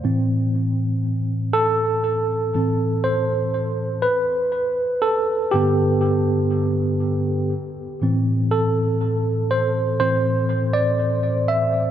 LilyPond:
<<
  \new Staff \with { instrumentName = "Tine electric piano" } { \time 4/4 \key a \minor \tempo 4 = 60 r4. a'4 r8 c''4 | b'4 a'8 g'2 r8 | r8 a'4 c''8 c''8. d''8. e''8 | }
  \new Staff \with { instrumentName = "Tine electric piano" } { \clef bass \time 4/4 \key a \minor <a, e c'>2~ <a, e c'>8 <a, e c'>8 r4 | r4. <g, d b>8 r2 | <a, e c'>8 r4. <a, e c'>8 r4. | }
>>